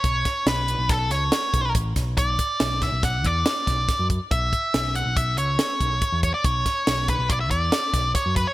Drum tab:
HH |xxxxxxxxxx|xxxxxxxxxx|xxxxxxxxxx|xxxxxxxxxx|
SD |-oo-ooo--o|--ooo-ooo-|--o---o---|-oo---oo--|
BD |oo--o--ooo|oo-ooo-ooo|oo--o--ooo|oo-ooo-ooo|